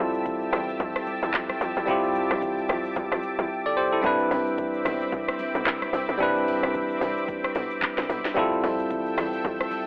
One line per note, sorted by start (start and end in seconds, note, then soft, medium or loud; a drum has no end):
0.00 0.49 F2 loud
0.00 1.83 G3 medium
0.00 1.83 C4 medium
0.00 1.84 E4 medium
0.00 1.85 F4 medium
0.00 4.00 G4 medium
0.00 1.85 A4 medium
0.00 4.00 E5 medium
0.00 4.00 A5 medium
0.00 1.84 E6 medium
0.14 shaker medium
0.25 kick medium
0.25 low conga medium
0.25 shaker medium
0.41 shaker soft
0.53 0.78 E2 loud
0.53 cross-stick loud
0.53 high conga medium
0.53 low conga medium
0.53 shaker medium
0.69 shaker medium
0.79 1.19 F2 loud
0.79 kick loud
0.79 low conga medium
0.79 shaker medium
0.96 cross-stick loud
0.96 shaker medium
1.06 high conga medium
1.06 shaker medium
1.22 1.33 E2 medium
1.22 shaker medium
1.34 1.59 F2 medium
1.34 kick loud
1.34 clap medium
1.34 shaker medium
1.50 cross-stick medium
1.50 high conga medium
1.50 shaker soft
1.61 1.75 F2 loud
1.61 shaker medium
1.77 1.87 E2 medium
1.77 shaker soft
1.86 3.99 G3 medium
1.86 4.00 C4 medium
1.86 3.47 E4 medium
1.86 3.48 F4 medium
1.86 4.02 D6 medium
1.86 kick loud
1.86 shaker medium
1.91 3.48 G4 medium
2.04 shaker medium
2.15 high conga medium
2.15 shaker medium
2.31 2.66 F2 loud
2.31 cross-stick medium
2.31 shaker medium
2.42 kick medium
2.42 low conga medium
2.42 shaker medium
2.58 shaker soft
2.69 2.94 F2 loud
2.69 cross-stick loud
2.69 high conga medium
2.69 low conga medium
2.69 shaker medium
2.85 shaker medium
2.96 3.11 E2 medium
2.96 kick loud
2.96 low conga medium
2.96 shaker medium
3.12 3.22 F2 loud
3.12 cross-stick loud
3.12 shaker medium
3.23 high conga medium
3.23 shaker medium
3.39 3.49 E2 medium
3.39 shaker medium
3.66 3.77 A4 medium
3.66 3.77 D5 medium
3.77 3.92 G4 medium
3.77 3.92 C5 medium
3.93 4.04 E4 medium
3.93 4.18 A4 medium
4.01 4.29 C2 loud
4.01 6.15 G3 medium
4.01 6.16 C4 medium
4.01 8.33 C4 medium
4.01 6.16 D4 medium
4.01 6.17 E4 medium
4.01 8.33 E5 medium
4.01 8.33 B5 medium
4.01 8.33 D6 medium
4.01 kick loud
4.01 shaker medium
4.06 6.18 B4 medium
4.20 shaker medium
4.31 4.81 C2 loud
4.31 open hi-hat medium
4.31 high conga medium
4.31 shaker medium
4.47 shaker medium
4.58 kick medium
4.58 low conga medium
4.58 shaker medium
4.74 shaker soft
4.85 5.10 B1 medium
4.85 cross-stick loud
4.85 open hi-hat medium
4.85 high conga medium
4.85 low conga medium
4.85 shaker medium
5.01 shaker medium
5.12 5.52 C2 medium
5.12 kick loud
5.12 low conga medium
5.12 shaker medium
5.28 cross-stick loud
5.28 shaker medium
5.39 open hi-hat soft
5.39 high conga medium
5.39 shaker medium
5.55 5.65 B1 loud
5.55 shaker medium
5.66 5.91 C2 loud
5.66 kick loud
5.66 clap medium
5.66 shaker medium
5.82 cross-stick medium
5.82 high conga medium
5.82 shaker soft
5.93 6.08 C2 loud
5.93 open hi-hat medium
5.93 shaker medium
6.09 6.19 B1 loud
6.09 shaker medium
6.18 8.31 G3 medium
6.18 8.32 C4 medium
6.18 8.33 D4 medium
6.18 8.33 E4 medium
6.18 kick loud
6.18 shaker medium
6.23 8.34 B4 medium
6.36 shaker medium
6.47 open hi-hat medium
6.47 high conga medium
6.47 shaker medium
6.63 6.98 C2 loud
6.63 cross-stick medium
6.63 shaker medium
6.74 kick medium
6.74 low conga medium
6.74 shaker medium
6.91 shaker soft
7.01 7.51 C2 loud
7.01 open hi-hat medium
7.01 high conga medium
7.01 low conga medium
7.01 shaker medium
7.17 shaker medium
7.28 kick loud
7.28 low conga medium
7.28 shaker medium
7.44 cross-stick loud
7.44 shaker medium
7.55 7.80 B1 loud
7.55 open hi-hat soft
7.55 high conga medium
7.55 shaker medium
7.71 shaker medium
7.82 kick loud
7.82 clap medium
7.82 shaker medium
7.98 8.09 C2 medium
7.98 snare medium
7.98 high conga medium
7.98 shaker soft
8.09 8.34 B1 loud
8.09 open hi-hat medium
8.09 shaker medium
8.25 snare medium
8.25 shaker medium
8.34 8.61 F2 loud
8.34 9.87 G3 medium
8.34 9.87 C4 medium
8.34 9.87 E4 medium
8.34 9.87 F4 medium
8.34 9.87 A4 medium
8.34 9.87 E5 medium
8.34 9.87 G5 medium
8.34 9.87 E6 loud
8.34 kick loud
8.34 shaker medium
8.39 9.87 A4 medium
8.52 shaker medium
8.64 9.14 F2 loud
8.64 open hi-hat medium
8.64 high conga medium
8.64 shaker medium
8.79 shaker medium
8.90 kick medium
8.90 low conga medium
8.90 shaker medium
9.06 shaker soft
9.18 9.42 E2 medium
9.18 cross-stick loud
9.18 open hi-hat medium
9.18 high conga medium
9.18 low conga medium
9.18 shaker medium
9.33 shaker medium
9.44 9.84 F2 loud
9.44 kick loud
9.44 low conga medium
9.44 shaker medium
9.61 cross-stick loud
9.61 shaker medium
9.71 open hi-hat soft
9.71 high conga medium
9.71 shaker medium